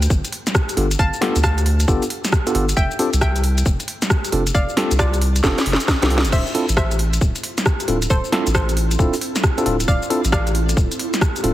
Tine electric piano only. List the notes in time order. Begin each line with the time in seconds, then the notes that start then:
0.77 B3 D4 F4 G4 A4
1.21 B3 D4 F4 G4 A4
1.88 B3 D4 F4 G4 A4
2.47 B3 D4 F4 G4 A4
2.55 B3 D4 F4 G4 A4
2.99 C4 D4 F4 G4 A4
4.32 C4 D4 F4 G4 A4
4.77 C4 D4 F4 G4 A4
5.43 C4 D4 F4 G4 A4
6.02 C4 D4 F4 G4 A4
6.10 C4 D4 F4 G4 A4
6.55 C4 D4 E4 F4 A4
7.88 C4 D4 E4 F4 A4
8.32 C4 D4 E4 F4 A4
8.99 C4 D4 E4 F4 A4
9.58 C4 D4 E4 F4 A4
9.66 C4 D4 E4 F4 A4
10.10 C4 D4 E4 F4 A4
11.44 C4 D4 E4 F4 A4